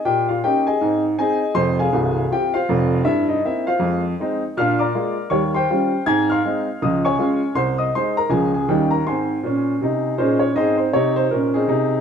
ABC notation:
X:1
M:4/4
L:1/8
Q:"Swing" 1/4=160
K:Ab
V:1 name="Upright piano"
[Gg] [Ff] [Gg] [Aea]2 z [Aea]2 | [cc'] [Afa]3 [Gg] [Fcf]3 | [=E=e] [_E_e] [=E=e] [Fcf]2 z3 | [ff'] [=db=d']3 [_d_d'] [cgc']3 |
[aa'] [fc'f']3 [ee'] [dad']3 | [cc'] [ee'] [cc'] [Bb] [Aa] [Aa] [Gg] [Bb] | [cac']6 [EAc] d | [Ace] c d c B [CEA]3 |]
V:2 name="Upright piano" clef=bass
B,,2 [B,DE]2 [A,,C]2 [CE]2 | [F,,,F,,]2 [C,,,C,,]2 [CF]2 [F,,,F,,]2 | G,,2 [B,C]2 [F,,A,]2 [A,CE]2 | [B,,=D]2 [A,B,F]2 [E,,G,]2 [G,_DF]2 |
[A,,C]2 [A,CE]2 [D,,F,]2 [A,DF]2 | C,,2 [A,EA]2 [D,,F,A,DF]2 [E,,E,G,DE]2 | [A,,C]2 [B,,D]2 [C,E]2 [B,,D]2 | [A,,C]2 [C,E]2 [B,,D]2 [C,E]2 |]